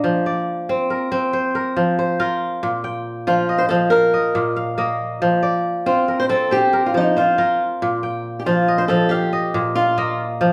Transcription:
Already playing: kora A#3 D#5 F5
0.04 kora F3
0.26 kora D5
0.69 kora C4
0.90 kora A#4
1.12 kora C4
1.33 kora C5
1.55 kora A#4
1.77 kora F3
1.99 kora C5
2.20 kora F4 A#4
2.63 kora A#2
2.84 kora G5
3.27 kora F3, steel-string acoustic guitar F4
3.49 kora D#5
3.58 steel-string acoustic guitar C5
3.69 kora F3, steel-string acoustic guitar A4
3.90 steel-string acoustic guitar A#4, kora F5
4.14 kora D#5
4.35 kora A#2
4.56 kora F5
4.78 kora A#3 D#5
5.22 kora F3
5.43 kora D5
5.86 kora C4, steel-string acoustic guitar F4
6.08 kora A#4
6.20 steel-string acoustic guitar C5
6.29 kora C4, steel-string acoustic guitar A4
6.51 steel-string acoustic guitar G4, kora C5
6.73 kora A#4
6.86 steel-string acoustic guitar F4
6.94 kora F3, steel-string acoustic guitar D#4
7.16 steel-string acoustic guitar F4, kora C5
7.38 kora F4 A#4
7.82 kora A#2
8.03 kora G5
8.40 steel-string acoustic guitar G4
8.46 kora F3, steel-string acoustic guitar F4
8.68 kora D#5
8.78 steel-string acoustic guitar C5
8.88 kora F3, steel-string acoustic guitar A4
9.09 steel-string acoustic guitar G4, kora F5
9.33 kora D#5
9.54 kora A#2
9.75 steel-string acoustic guitar F4, kora F5
9.98 kora A#3 D#5
10.41 kora F3

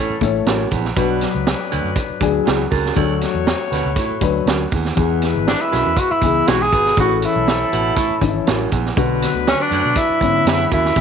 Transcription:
Already playing: baritone saxophone A2, horn section E3 C#4 A4, tenor saxophone C#4
0.10 muted fingered electric bass stroke
0.21 fingered electric bass A1, upright piano A3 E4 C#5, kick, closed hi-hat
0.46 fingered electric bass A1, baritone saxophone F#2, snare, closed hi-hat
0.70 fingered electric bass A#1, baritone saxophone E2, kick, closed hi-hat
0.85 snare
0.95 fingered electric bass B1, baritone saxophone B2, horn section F#3 D4 B4, upright piano F#3 D4 B4, kick, closed hi-hat
1.21 snare, closed hi-hat
1.35 fingered electric bass C#2
1.47 snare, closed hi-hat
1.71 baritone saxophone D2, fingered electric bass D2, closed hi-hat
1.84 fingered electric bass F#2
1.96 kick, closed hi-hat
2.10 muted fingered electric bass stroke
2.21 fingered electric bass D2, upright piano F#3 D4 G#4, kick, closed hi-hat
2.45 fingered electric bass C#2, baritone saxophone E2, snare, closed hi-hat
2.71 fingered electric bass C#2, baritone saxophone F#2, kick, open hi-hat
2.86 snare
2.95 baritone saxophone D2, fingered electric bass D2, upright piano F#3 D4 A4, horn section A3 F#4 C#5, kick, closed hi-hat
3.21 snare, closed hi-hat
3.34 fingered electric bass E2
3.47 snare, closed hi-hat
3.71 fingered electric bass D2, baritone saxophone B2, snare, closed hi-hat
3.85 fingered electric bass C#2
3.96 baritone saxophone A2, kick, closed hi-hat
4.10 muted fingered electric bass stroke
4.21 fingered electric bass D2, upright piano F#3 D4 B4, kick, closed hi-hat
4.46 fingered electric bass D2, baritone saxophone F#2, snare, closed hi-hat
4.71 fingered electric bass D#2, baritone saxophone E2, kick, open hi-hat
4.85 snare
4.95 baritone saxophone E2, fingered electric bass E2, upright piano E3 B3 G#4, horn section G#3 E4 B4, kick, closed hi-hat
5.22 snare, closed hi-hat
5.35 fingered electric bass G#1
5.47 tenor saxophone D4, snare, closed hi-hat
5.61 tenor saxophone E4
5.71 fingered electric bass B1, baritone saxophone F#2, snare, closed hi-hat
5.86 fingered electric bass E2
5.97 tenor saxophone F#4, kick, closed hi-hat
6.11 tenor saxophone E4, muted fingered electric bass stroke
6.22 fingered electric bass C#2, upright piano E3 B3 G#4, kick, closed hi-hat
6.47 fingered electric bass B1, baritone saxophone G#2, tenor saxophone F#4, snare, closed hi-hat
6.61 tenor saxophone G#4
6.72 fingered electric bass G#1, baritone saxophone B2, kick, closed hi-hat
6.86 snare
6.96 fingered electric bass A1, baritone saxophone A2, upright piano E3 C#4 G#4, horn section E3 C#4 A4, tenor saxophone F#4, kick, closed hi-hat
7.05 upright piano A4
7.18 tenor saxophone F#4
7.22 tenor saxophone E4, closed hi-hat
7.36 fingered electric bass B1
7.48 snare, closed hi-hat
7.72 fingered electric bass A1, baritone saxophone B2, closed hi-hat
7.96 baritone saxophone A2, kick, closed hi-hat
8.10 muted fingered electric bass stroke
8.21 fingered electric bass G#1, upright piano E3 C#4 D#4, kick, closed hi-hat
8.29 upright piano E4
8.47 fingered electric bass A1, baritone saxophone F#2, snare, closed hi-hat
8.72 fingered electric bass A#1, baritone saxophone E2, kick, closed hi-hat
8.86 snare
8.96 fingered electric bass B1, baritone saxophone B2, upright piano D3 B3 F#4, horn section F#3 D4 B4, kick, closed hi-hat
9.22 snare, closed hi-hat
9.34 fingered electric bass D2
9.47 tenor saxophone C#4, snare, closed hi-hat
9.61 tenor saxophone D4
9.71 baritone saxophone D2, fingered electric bass F#2, closed hi-hat
9.85 fingered electric bass B2
9.96 tenor saxophone E4, kick, closed hi-hat
10.10 muted fingered electric bass stroke
10.21 fingered electric bass G#2, upright piano D3 B3 C#4, kick, closed hi-hat
10.46 baritone saxophone E2, fingered electric bass F#2, snare, closed hi-hat
10.71 fingered electric bass D#2, baritone saxophone F#2, tenor saxophone E4, kick, closed hi-hat
10.85 snare
10.95 baritone saxophone E2, fingered electric bass E2, upright piano E3 B3, horn section G#3 C#5, kick, closed hi-hat

